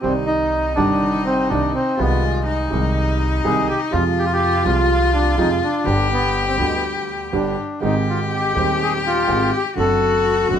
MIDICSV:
0, 0, Header, 1, 5, 480
1, 0, Start_track
1, 0, Key_signature, -3, "minor"
1, 0, Tempo, 487013
1, 36, Time_signature, 4, 2, 24, 8
1, 10441, End_track
2, 0, Start_track
2, 0, Title_t, "Cello"
2, 0, Program_c, 0, 42
2, 31, Note_on_c, 0, 63, 64
2, 1924, Note_off_c, 0, 63, 0
2, 1952, Note_on_c, 0, 65, 70
2, 2405, Note_off_c, 0, 65, 0
2, 2441, Note_on_c, 0, 63, 73
2, 3872, Note_on_c, 0, 65, 91
2, 3887, Note_off_c, 0, 63, 0
2, 5769, Note_on_c, 0, 67, 80
2, 5784, Note_off_c, 0, 65, 0
2, 7467, Note_off_c, 0, 67, 0
2, 7717, Note_on_c, 0, 67, 78
2, 9600, Note_off_c, 0, 67, 0
2, 9628, Note_on_c, 0, 66, 78
2, 10441, Note_off_c, 0, 66, 0
2, 10441, End_track
3, 0, Start_track
3, 0, Title_t, "Bandoneon"
3, 0, Program_c, 1, 23
3, 18, Note_on_c, 1, 60, 62
3, 131, Note_off_c, 1, 60, 0
3, 257, Note_on_c, 1, 63, 70
3, 721, Note_off_c, 1, 63, 0
3, 744, Note_on_c, 1, 62, 65
3, 1204, Note_off_c, 1, 62, 0
3, 1232, Note_on_c, 1, 60, 70
3, 1464, Note_off_c, 1, 60, 0
3, 1470, Note_on_c, 1, 62, 61
3, 1701, Note_off_c, 1, 62, 0
3, 1716, Note_on_c, 1, 60, 65
3, 1947, Note_on_c, 1, 59, 67
3, 1968, Note_off_c, 1, 60, 0
3, 2203, Note_off_c, 1, 59, 0
3, 2204, Note_on_c, 1, 56, 56
3, 2886, Note_off_c, 1, 56, 0
3, 3397, Note_on_c, 1, 68, 74
3, 3619, Note_off_c, 1, 68, 0
3, 3636, Note_on_c, 1, 67, 74
3, 3744, Note_off_c, 1, 67, 0
3, 3871, Note_on_c, 1, 65, 74
3, 3979, Note_off_c, 1, 65, 0
3, 4127, Note_on_c, 1, 67, 75
3, 4185, Note_off_c, 1, 67, 0
3, 4197, Note_on_c, 1, 65, 63
3, 4259, Note_off_c, 1, 65, 0
3, 4269, Note_on_c, 1, 67, 85
3, 4571, Note_off_c, 1, 67, 0
3, 4599, Note_on_c, 1, 65, 74
3, 5033, Note_off_c, 1, 65, 0
3, 5061, Note_on_c, 1, 62, 75
3, 5281, Note_off_c, 1, 62, 0
3, 5309, Note_on_c, 1, 63, 63
3, 5414, Note_off_c, 1, 63, 0
3, 5556, Note_on_c, 1, 62, 68
3, 5993, Note_off_c, 1, 62, 0
3, 6038, Note_on_c, 1, 59, 57
3, 6357, Note_off_c, 1, 59, 0
3, 6378, Note_on_c, 1, 60, 45
3, 6466, Note_off_c, 1, 60, 0
3, 6469, Note_on_c, 1, 59, 46
3, 6557, Note_off_c, 1, 59, 0
3, 6567, Note_on_c, 1, 56, 44
3, 6652, Note_off_c, 1, 56, 0
3, 6652, Note_on_c, 1, 59, 44
3, 6741, Note_off_c, 1, 59, 0
3, 7236, Note_on_c, 1, 62, 55
3, 7684, Note_off_c, 1, 62, 0
3, 7732, Note_on_c, 1, 63, 61
3, 7836, Note_off_c, 1, 63, 0
3, 7977, Note_on_c, 1, 65, 58
3, 8081, Note_off_c, 1, 65, 0
3, 8215, Note_on_c, 1, 67, 66
3, 8700, Note_off_c, 1, 67, 0
3, 8701, Note_on_c, 1, 68, 76
3, 8803, Note_off_c, 1, 68, 0
3, 8936, Note_on_c, 1, 65, 85
3, 9373, Note_off_c, 1, 65, 0
3, 9407, Note_on_c, 1, 67, 68
3, 9513, Note_off_c, 1, 67, 0
3, 9652, Note_on_c, 1, 69, 82
3, 10327, Note_off_c, 1, 69, 0
3, 10441, End_track
4, 0, Start_track
4, 0, Title_t, "Upright piano"
4, 0, Program_c, 2, 0
4, 13, Note_on_c, 2, 48, 63
4, 23, Note_on_c, 2, 51, 47
4, 32, Note_on_c, 2, 36, 62
4, 38, Note_on_c, 2, 55, 47
4, 52, Note_on_c, 2, 74, 57
4, 723, Note_off_c, 2, 51, 0
4, 727, Note_off_c, 2, 48, 0
4, 728, Note_off_c, 2, 36, 0
4, 731, Note_off_c, 2, 55, 0
4, 738, Note_off_c, 2, 74, 0
4, 743, Note_on_c, 2, 48, 49
4, 758, Note_on_c, 2, 51, 48
4, 762, Note_on_c, 2, 31, 64
4, 763, Note_on_c, 2, 43, 62
4, 770, Note_on_c, 2, 55, 51
4, 783, Note_on_c, 2, 74, 58
4, 1441, Note_off_c, 2, 48, 0
4, 1449, Note_off_c, 2, 51, 0
4, 1451, Note_off_c, 2, 31, 0
4, 1451, Note_off_c, 2, 43, 0
4, 1455, Note_off_c, 2, 55, 0
4, 1461, Note_off_c, 2, 74, 0
4, 1478, Note_on_c, 2, 48, 67
4, 1481, Note_on_c, 2, 51, 48
4, 1484, Note_on_c, 2, 36, 63
4, 1485, Note_on_c, 2, 55, 52
4, 1486, Note_on_c, 2, 62, 61
4, 1686, Note_off_c, 2, 51, 0
4, 1688, Note_off_c, 2, 36, 0
4, 1688, Note_off_c, 2, 48, 0
4, 1688, Note_off_c, 2, 55, 0
4, 1689, Note_off_c, 2, 62, 0
4, 1942, Note_on_c, 2, 48, 55
4, 1955, Note_on_c, 2, 51, 49
4, 1957, Note_off_c, 2, 48, 0
4, 1962, Note_on_c, 2, 36, 67
4, 1963, Note_on_c, 2, 48, 62
4, 1969, Note_on_c, 2, 56, 53
4, 1981, Note_on_c, 2, 63, 61
4, 2645, Note_off_c, 2, 51, 0
4, 2648, Note_off_c, 2, 48, 0
4, 2649, Note_off_c, 2, 36, 0
4, 2652, Note_off_c, 2, 56, 0
4, 2658, Note_off_c, 2, 63, 0
4, 2662, Note_on_c, 2, 48, 66
4, 2674, Note_on_c, 2, 51, 50
4, 2682, Note_on_c, 2, 36, 62
4, 2689, Note_on_c, 2, 56, 51
4, 2699, Note_on_c, 2, 63, 62
4, 3359, Note_off_c, 2, 51, 0
4, 3362, Note_off_c, 2, 48, 0
4, 3363, Note_off_c, 2, 36, 0
4, 3367, Note_off_c, 2, 56, 0
4, 3372, Note_off_c, 2, 63, 0
4, 3394, Note_on_c, 2, 48, 71
4, 3395, Note_on_c, 2, 51, 58
4, 3398, Note_on_c, 2, 36, 75
4, 3399, Note_on_c, 2, 63, 65
4, 3400, Note_on_c, 2, 56, 58
4, 3597, Note_off_c, 2, 51, 0
4, 3598, Note_off_c, 2, 36, 0
4, 3598, Note_off_c, 2, 48, 0
4, 3599, Note_off_c, 2, 56, 0
4, 3599, Note_off_c, 2, 63, 0
4, 3852, Note_on_c, 2, 48, 57
4, 3868, Note_on_c, 2, 53, 69
4, 3873, Note_on_c, 2, 41, 70
4, 3879, Note_on_c, 2, 56, 51
4, 3895, Note_on_c, 2, 65, 67
4, 4538, Note_off_c, 2, 48, 0
4, 4548, Note_off_c, 2, 41, 0
4, 4549, Note_off_c, 2, 53, 0
4, 4551, Note_off_c, 2, 56, 0
4, 4559, Note_off_c, 2, 65, 0
4, 4563, Note_on_c, 2, 48, 57
4, 4575, Note_on_c, 2, 53, 53
4, 4578, Note_off_c, 2, 48, 0
4, 4583, Note_on_c, 2, 36, 70
4, 4583, Note_on_c, 2, 48, 69
4, 4589, Note_on_c, 2, 56, 52
4, 4605, Note_on_c, 2, 65, 66
4, 5255, Note_off_c, 2, 53, 0
4, 5259, Note_off_c, 2, 36, 0
4, 5260, Note_off_c, 2, 48, 0
4, 5263, Note_off_c, 2, 56, 0
4, 5270, Note_off_c, 2, 65, 0
4, 5298, Note_on_c, 2, 48, 59
4, 5299, Note_on_c, 2, 53, 67
4, 5300, Note_on_c, 2, 41, 71
4, 5302, Note_on_c, 2, 56, 51
4, 5304, Note_on_c, 2, 65, 62
4, 5497, Note_off_c, 2, 48, 0
4, 5498, Note_off_c, 2, 41, 0
4, 5498, Note_off_c, 2, 53, 0
4, 5499, Note_off_c, 2, 56, 0
4, 5500, Note_off_c, 2, 65, 0
4, 5756, Note_on_c, 2, 50, 59
4, 5768, Note_on_c, 2, 55, 53
4, 5774, Note_on_c, 2, 31, 61
4, 5777, Note_on_c, 2, 43, 62
4, 5784, Note_on_c, 2, 59, 53
4, 5795, Note_on_c, 2, 67, 64
4, 6451, Note_off_c, 2, 50, 0
4, 6457, Note_off_c, 2, 55, 0
4, 6460, Note_off_c, 2, 31, 0
4, 6462, Note_off_c, 2, 43, 0
4, 6465, Note_off_c, 2, 59, 0
4, 6471, Note_off_c, 2, 67, 0
4, 6475, Note_on_c, 2, 50, 64
4, 6492, Note_on_c, 2, 55, 46
4, 6496, Note_on_c, 2, 38, 59
4, 6505, Note_on_c, 2, 59, 49
4, 6516, Note_on_c, 2, 67, 59
4, 7186, Note_off_c, 2, 55, 0
4, 7187, Note_off_c, 2, 50, 0
4, 7188, Note_off_c, 2, 38, 0
4, 7192, Note_off_c, 2, 59, 0
4, 7198, Note_off_c, 2, 67, 0
4, 7217, Note_on_c, 2, 50, 53
4, 7223, Note_on_c, 2, 31, 59
4, 7223, Note_on_c, 2, 43, 65
4, 7223, Note_on_c, 2, 55, 48
4, 7224, Note_on_c, 2, 59, 47
4, 7226, Note_on_c, 2, 67, 59
4, 7427, Note_off_c, 2, 50, 0
4, 7430, Note_off_c, 2, 31, 0
4, 7430, Note_off_c, 2, 43, 0
4, 7430, Note_off_c, 2, 55, 0
4, 7430, Note_off_c, 2, 59, 0
4, 7431, Note_off_c, 2, 67, 0
4, 7692, Note_on_c, 2, 51, 58
4, 7704, Note_on_c, 2, 56, 51
4, 7711, Note_on_c, 2, 44, 61
4, 7712, Note_on_c, 2, 32, 64
4, 7720, Note_on_c, 2, 60, 50
4, 7732, Note_on_c, 2, 72, 57
4, 8390, Note_off_c, 2, 51, 0
4, 8396, Note_off_c, 2, 56, 0
4, 8400, Note_off_c, 2, 32, 0
4, 8400, Note_off_c, 2, 44, 0
4, 8404, Note_off_c, 2, 60, 0
4, 8410, Note_off_c, 2, 72, 0
4, 8413, Note_on_c, 2, 51, 57
4, 8426, Note_on_c, 2, 56, 49
4, 8435, Note_on_c, 2, 39, 61
4, 8437, Note_on_c, 2, 27, 66
4, 8441, Note_on_c, 2, 60, 50
4, 8453, Note_on_c, 2, 72, 61
4, 9108, Note_off_c, 2, 51, 0
4, 9114, Note_off_c, 2, 56, 0
4, 9119, Note_off_c, 2, 39, 0
4, 9120, Note_off_c, 2, 27, 0
4, 9122, Note_off_c, 2, 60, 0
4, 9128, Note_off_c, 2, 72, 0
4, 9143, Note_on_c, 2, 51, 59
4, 9145, Note_on_c, 2, 56, 53
4, 9146, Note_on_c, 2, 32, 66
4, 9146, Note_on_c, 2, 44, 70
4, 9147, Note_on_c, 2, 60, 52
4, 9151, Note_on_c, 2, 68, 65
4, 9351, Note_off_c, 2, 51, 0
4, 9352, Note_off_c, 2, 56, 0
4, 9353, Note_off_c, 2, 32, 0
4, 9353, Note_off_c, 2, 44, 0
4, 9353, Note_off_c, 2, 60, 0
4, 9355, Note_off_c, 2, 68, 0
4, 9613, Note_on_c, 2, 50, 55
4, 9625, Note_on_c, 2, 57, 54
4, 9630, Note_on_c, 2, 54, 68
4, 9631, Note_on_c, 2, 42, 67
4, 9638, Note_on_c, 2, 60, 51
4, 9652, Note_on_c, 2, 66, 60
4, 10311, Note_off_c, 2, 50, 0
4, 10317, Note_off_c, 2, 57, 0
4, 10320, Note_off_c, 2, 42, 0
4, 10320, Note_off_c, 2, 54, 0
4, 10323, Note_off_c, 2, 60, 0
4, 10330, Note_off_c, 2, 66, 0
4, 10333, Note_on_c, 2, 50, 57
4, 10347, Note_on_c, 2, 57, 51
4, 10353, Note_on_c, 2, 42, 64
4, 10354, Note_on_c, 2, 54, 66
4, 10362, Note_on_c, 2, 60, 53
4, 10372, Note_on_c, 2, 66, 58
4, 10441, Note_off_c, 2, 42, 0
4, 10441, Note_off_c, 2, 50, 0
4, 10441, Note_off_c, 2, 54, 0
4, 10441, Note_off_c, 2, 57, 0
4, 10441, Note_off_c, 2, 60, 0
4, 10441, Note_off_c, 2, 66, 0
4, 10441, End_track
5, 0, Start_track
5, 0, Title_t, "Upright bass"
5, 0, Program_c, 3, 32
5, 40, Note_on_c, 3, 36, 64
5, 732, Note_off_c, 3, 36, 0
5, 772, Note_on_c, 3, 31, 66
5, 1456, Note_off_c, 3, 31, 0
5, 1492, Note_on_c, 3, 36, 75
5, 1692, Note_off_c, 3, 36, 0
5, 1969, Note_on_c, 3, 36, 72
5, 2652, Note_off_c, 3, 36, 0
5, 2688, Note_on_c, 3, 36, 70
5, 3366, Note_off_c, 3, 36, 0
5, 3406, Note_on_c, 3, 36, 78
5, 3602, Note_off_c, 3, 36, 0
5, 3877, Note_on_c, 3, 41, 79
5, 4550, Note_off_c, 3, 41, 0
5, 4591, Note_on_c, 3, 36, 74
5, 5263, Note_off_c, 3, 36, 0
5, 5303, Note_on_c, 3, 41, 80
5, 5500, Note_off_c, 3, 41, 0
5, 5782, Note_on_c, 3, 31, 69
5, 6464, Note_off_c, 3, 31, 0
5, 6499, Note_on_c, 3, 38, 65
5, 7189, Note_off_c, 3, 38, 0
5, 7229, Note_on_c, 3, 31, 67
5, 7433, Note_off_c, 3, 31, 0
5, 7720, Note_on_c, 3, 32, 69
5, 8404, Note_off_c, 3, 32, 0
5, 8439, Note_on_c, 3, 39, 64
5, 9121, Note_off_c, 3, 39, 0
5, 9153, Note_on_c, 3, 32, 72
5, 9356, Note_off_c, 3, 32, 0
5, 9635, Note_on_c, 3, 30, 67
5, 10322, Note_off_c, 3, 30, 0
5, 10351, Note_on_c, 3, 30, 69
5, 10441, Note_off_c, 3, 30, 0
5, 10441, End_track
0, 0, End_of_file